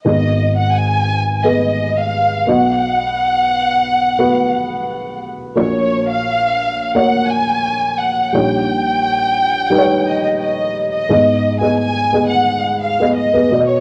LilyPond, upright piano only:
<<
  \new Staff \with { instrumentName = "Upright piano" } { \time 4/4 \key gis \dorian \tempo 4 = 87 <b gis' dis''>4.~ <b gis' dis''>16 r16 <b gis' b'>4. <b fis' dis''>8~ | <b fis' dis''>4~ <b fis' dis''>16 r8. <b fis' b'>4.~ <b fis' b'>16 r16 | <ais fis' cis''>4.~ <ais fis' cis''>16 r16 <ais fis' cis''>4.~ <ais fis' cis''>16 r16 | <g dis' cis''>4.~ <g dis' cis''>16 r16 <g dis' b' cis''>4.~ <g dis' b' cis''>16 r16 |
<b gis' dis''>8 r16 <b gis' dis''>8 r16 <b gis' dis''>4 r16 <b gis' dis''>8 <b gis' b'>16 <b fis' d'' dis''>8 | }
  \new Staff \with { instrumentName = "Upright piano" } { \clef bass \time 4/4 \key gis \dorian <gis,, gis,>2.~ <gis,, gis,>8 <b,, b,>8~ | <b,, b,>2.~ <b,, b,>8 r8 | <ais,, ais,>1 | <ais,, ais,>1 |
gis,4. r2 b,8 | }
>>